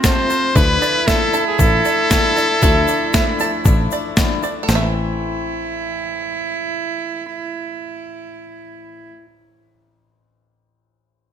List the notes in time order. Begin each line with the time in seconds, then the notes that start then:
Already playing: F1 F2 F3 A3 C4 A4 C5 A5
0.03 F2 C3 F3 A3 C4 F4 A4 C5, kick, snare, shaker
0.28 F3 A3 C4 F4 C5, shaker
0.55 D2 D3 F3 A3 D4 E4 A4 B4, kick, shaker
0.81 A3 D4 E4 D5, shaker
1.06 D3 F3 A3 D4 E4 A4 E5, kick, snare, shaker
1.31 F3 A3 D4 E4 A4 A5, shaker
1.47 G#4
1.58 A1 F3 A3 D4 E4 A4, kick, shaker
1.84 A3 D4 E4 D5, shaker
2.10 D3 F3 A3 D4 E4 A4, kick, snare, shaker
2.36 A3 D4 E4 D5, shaker
2.62 D2 D3 F3 A3 D4 E4 A4, kick, shaker
2.87 A3 D4 E4 D5, shaker
3.13 D3 F3 A3 D4 E4 A4 E5, kick, snare, shaker
3.39 F3 A3 D4 E4 A4 A5, shaker
3.65 A1 F3 A3 D4 E4 A4, kick, shaker
3.91 A3 D4 E4 D5, shaker
4.17 D3 F3 A3 D4 E4 A4, kick, snare, shaker
4.42 A3 D4 E4 D5, shaker
4.63 A2 E3 A4
4.68 A1 E3 A3 C4 E4 C5, snare, shaker
4.73 A3 C4 A4 E5
4.80 E4